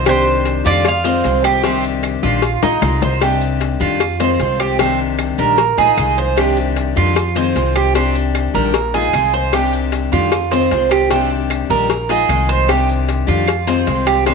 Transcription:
Already playing: C2
0.05 C3 D#3 G3 D4 G4 C5, cowbell, claves, maracas
0.45 cowbell, maracas
0.65 F2 D#3 G3 D4 F4 G4 D5, maracas
0.84 F5, muted steel-string acoustic guitar stroke, cowbell, claves, maracas
1.04 D#3 G#3 C4 F4 C5, cowbell
1.24 C2 D#3 G#3 C4 F4, cowbell, maracas
1.44 G4, cowbell, claves, maracas
1.63 C3 D#3 G3 C4 D4 G4, cowbell, maracas
1.84 maracas
2.03 cowbell, claves, maracas
2.23 A#1 D#3 G3 D4 F4 G4, maracas
2.42 muted steel-string acoustic guitar stroke, cowbell, maracas
2.62 A#1 G#3 D#4 F4, cowbell, high bongo, maracas
2.82 C2 D#3 G#3 D#4 F4, cowbell, low bongo, claves, maracas
3.02 C5, low bongo, maracas
3.21 C3 D#3 G3 D4 G4, cowbell, claves, maracas
3.41 maracas
3.61 cowbell, maracas
3.80 F2 D#3 G3 D4 F4 G4, maracas
4.00 muted steel-string acoustic guitar stroke, cowbell, claves, maracas
4.20 D#3 G#3 C4 F4 C5, cowbell, maracas
4.39 C2 D#3 G#3 C4 F4, cowbell, maracas
4.60 G4, cowbell, claves, maracas
4.79 C3 D#3 G3 C4 D4 G4, cowbell, maracas
5.19 cowbell, claves, maracas
5.38 A#1 D#3 G3 D4 G4 A#4, maracas
5.58 muted steel-string acoustic guitar stroke, cowbell, maracas
5.77 A#1 G#3 D#4 F4 G#4, cowbell
5.97 C2 D#3 G#3 D#4 F4, cowbell, claves, maracas
6.17 C5, maracas
6.36 C3 D#3 G3 D4 G4, cowbell, claves, maracas
6.57 maracas
6.76 cowbell, maracas
6.96 F2 D#3 G3 D4 F4 G4, maracas
7.15 muted steel-string acoustic guitar stroke, cowbell, claves, maracas
7.35 D#3 G#3 C4 F4 C5, cowbell
7.55 C2 D#3 G#3 C4 F4, cowbell, maracas
7.75 G4, cowbell, claves, maracas
7.94 C3 D#3 G3 C4 D4 G4, cowbell, maracas
8.15 maracas
8.35 cowbell, claves, maracas
8.54 A#1 D#3 G3 D4 G4 A#4, maracas
8.74 muted steel-string acoustic guitar stroke, cowbell, maracas
8.94 G#3 D#4 F4 G#4, cowbell
9.13 C2 D#3 G#3 D#4 F4, cowbell, claves, maracas
9.34 C5, maracas
9.53 C3 D#3 G3 D4 G4, cowbell, claves, maracas
9.73 maracas
9.92 cowbell, maracas
10.12 F2 D#3 G3 D4 F4 G4, maracas
10.32 muted steel-string acoustic guitar stroke, cowbell, claves, maracas
10.51 D#3 G#3 C4 F4 C5, cowbell, maracas
10.71 C2 D#3 G#3 C4 F4, cowbell, maracas
10.91 G4, cowbell, claves, maracas
11.11 C3 D#3 G3 C4 D4 G4, cowbell, maracas
11.50 cowbell, claves, maracas
11.70 A#1 D#3 G3 D4 G4 A#4, maracas
11.90 muted steel-string acoustic guitar stroke, cowbell, maracas
12.09 G#3 D#4 F4 G#4, cowbell
12.29 C2 D#3 G#3 D#4 F4, cowbell, claves, maracas
12.49 C5, maracas
12.68 C3 D#3 G3 D4 G4, cowbell, claves, maracas
12.89 maracas
13.09 cowbell, maracas
13.27 F2 D#3 G3 D4 F4 G4, maracas
13.48 muted steel-string acoustic guitar stroke, cowbell, claves, maracas
13.67 D#3 G#3 C4 F4 C5, cowbell, maracas
13.87 C2 D#3 G#3 C4 F4, cowbell, maracas
14.07 G4, cowbell, claves, maracas
14.26 C3 D#3 G3 C4 D4 G4, cowbell, maracas

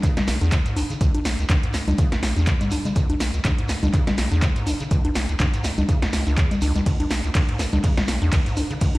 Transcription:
0.03 C#3, kick, clap, closed hi-hat, shekere
0.17 C#2, snare, closed hi-hat, low conga
0.27 B1, snare, open hi-hat, shekere
0.41 E2, closed hi-hat, high conga, shekere
0.52 C#2, kick, clap, closed hi-hat, shekere
0.65 G#2, closed hi-hat, shekere
0.76 B1, open hi-hat, high conga, shekere
0.90 C#3, closed hi-hat, shekere
1.01 C#2, kick, closed hi-hat, shekere
1.15 C#2, closed hi-hat, high conga
1.25 B1, snare, open hi-hat, shekere
1.39 C#2, closed hi-hat, shekere
1.49 E2, kick, clap, closed hi-hat, high conga, shekere
1.63 G#2, closed hi-hat
1.74 B1, snare, open hi-hat, shekere
1.88 C#2, closed hi-hat, high conga, low conga, shekere
1.98 C#3, kick, closed hi-hat, shekere
2.12 C#2, snare, closed hi-hat
2.23 B1, snare, open hi-hat, shekere
2.36 E2, closed hi-hat, high conga, shekere
2.46 C#2, kick, clap, closed hi-hat, shekere
2.61 G#2, closed hi-hat, low conga, shekere
2.71 B1, open hi-hat, high conga, shekere
2.85 C#3, closed hi-hat, low conga, shekere
2.96 C#2, kick, closed hi-hat, shekere
3.10 C#2, closed hi-hat, high conga
3.20 B1, snare, open hi-hat, shekere
3.33 C#2, closed hi-hat, shekere
3.45 E2, kick, clap, closed hi-hat, high conga, shekere
3.58 G#2, closed hi-hat
3.69 B1, snare, open hi-hat, shekere
3.83 C#2, closed hi-hat, high conga, low conga, shekere
3.93 C#3, kick, clap, closed hi-hat, shekere
4.07 C#2, snare, closed hi-hat, low conga
4.17 B1, snare, open hi-hat, shekere
4.32 E2, closed hi-hat, high conga, shekere
4.42 C#2, kick, clap, closed hi-hat, shekere
4.56 G#2, closed hi-hat, shekere
4.67 B1, open hi-hat, high conga, shekere
4.80 C#3, closed hi-hat, shekere
4.91 C#2, kick, closed hi-hat, shekere
5.05 C#2, closed hi-hat, high conga
5.15 B1, snare, open hi-hat, shekere
5.29 C#2, closed hi-hat, shekere
5.39 E2, kick, clap, closed hi-hat, high conga, shekere
5.53 G#2, closed hi-hat, shekere
5.64 B1, snare, open hi-hat, shekere
5.77 C#2, closed hi-hat, high conga, low conga, shekere
5.89 C#3, kick, closed hi-hat, shekere
6.02 C#2, snare, closed hi-hat
6.13 C#2, snare, open hi-hat, shekere
6.27 C#2, closed hi-hat, high conga, shekere
6.37 E2, kick, clap, closed hi-hat, shekere
6.51 B1, closed hi-hat, low conga, shekere
6.61 C#2, open hi-hat, high conga, shekere
6.75 C#2, closed hi-hat, low conga, shekere
6.86 C#2, kick, closed hi-hat, ride, shekere
7.00 C#2, closed hi-hat, high conga
7.10 B1, snare, open hi-hat, shekere
7.24 C#2, closed hi-hat, shekere
7.35 E2, kick, clap, closed hi-hat, ride, high conga, shekere
7.49 G#2, closed hi-hat
7.59 B1, snare, open hi-hat, shekere
7.73 C#2, closed hi-hat, high conga, low conga, shekere
7.83 C#3, kick, clap, closed hi-hat, ride, shekere
7.97 C#2, snare, closed hi-hat, low conga
8.08 B1, snare, open hi-hat, shekere
8.22 E2, closed hi-hat, high conga, shekere
8.32 C#2, kick, clap, closed hi-hat, ride, shekere
8.46 G#2, closed hi-hat, shekere
8.56 B1, open hi-hat, high conga, shekere
8.70 C#3, closed hi-hat, shekere
8.81 C#2, kick, closed hi-hat, ride, shekere
8.95 C#2, closed hi-hat, high conga

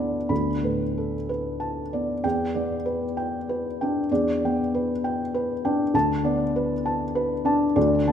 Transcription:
Already playing: D2 B3 A4 B4 D5 A5 B5
0.29 D2 B5
0.63 A2 B4
0.98 A4
1.29 B4
1.60 A5
1.93 B3 D5
2.24 E2 G5
2.54 B3 D5
2.86 B4
3.17 G5
3.49 B4
3.81 D4 G5
4.11 E2 D5
4.45 B3 G5
4.74 B4
5.04 G5
5.34 B4
5.65 D4 G5
5.94 D2 A5
6.24 B3 D5
6.56 B4
6.86 A5
7.15 B4
7.45 D4 A5
7.76 D2 D5
8.07 B3 A5

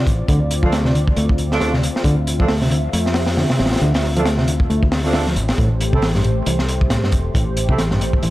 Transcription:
Already playing: C4 F4 D5
0.07 A1, kick, closed hi-hat
0.28 D2 D3, kick, closed hi-hat
0.51 closed hi-hat
0.63 F3 A3 C4 D4 F4 A4, kick
0.72 A3, snare, closed hi-hat
0.85 C3, snare
0.94 D3, closed hi-hat
1.08 kick
1.16 D2 A3, closed hi-hat
1.29 kick
1.38 closed hi-hat
1.51 A3 C4 D4 F4 A4, snare
1.61 D3, snare, closed hi-hat
1.74 C3, snare
1.83 closed hi-hat
1.96 snare
2.04 D2 D3 E5, kick, closed hi-hat
2.27 closed hi-hat
2.40 F3 A3 C4 D4 F4 A4, kick
2.48 A3, snare, open hi-hat
2.62 C3, snare
2.71 D3, closed hi-hat
2.93 F2 A3, closed hi-hat
3.06 snare
3.14 snare, open hi-hat
3.27 snare, open hi-hat
3.37 D3, snare, open hi-hat
3.50 C3, snare, open hi-hat
3.59 A1, snare, open hi-hat
3.66 snare, open hi-hat
3.72 snare, open hi-hat
3.76 snare, open hi-hat
3.81 D2 D3, closed hi-hat
3.94 snare, open hi-hat
4.03 snare
4.16 F3 A3 C4 D4 F4 A4, closed hi-hat
4.26 A3, snare, closed hi-hat
4.38 C3, snare
4.48 D3, closed hi-hat
4.60 kick
4.69 D2 A3, closed hi-hat
4.83 kick
4.92 snare, open hi-hat
5.04 A3 C4 D4 F4 A4, snare
5.13 D3, snare, open hi-hat
5.26 F3, snare
5.36 A1 A3 G4 C5, closed hi-hat
5.48 snare, open hi-hat
5.58 A1 A2, kick, closed hi-hat
5.81 closed hi-hat
5.93 C3 A3 C4 E4 G4 A4, kick
6.02 E3, snare, open hi-hat
6.15 G2, snare
6.24 A2, closed hi-hat
6.46 C2 E3, closed hi-hat
6.59 snare
6.69 closed hi-hat
6.81 kick
6.90 A2, snare, closed hi-hat
7.03 G2, snare
7.12 E1, kick, closed hi-hat
7.35 A1 A2, kick, closed hi-hat
7.57 closed hi-hat
7.69 C3 A3 C4 E4 G4 A4, kick
7.78 E3, snare, closed hi-hat
7.91 G2, snare
8.00 A2, closed hi-hat
8.13 kick
8.23 A1 E3, closed hi-hat

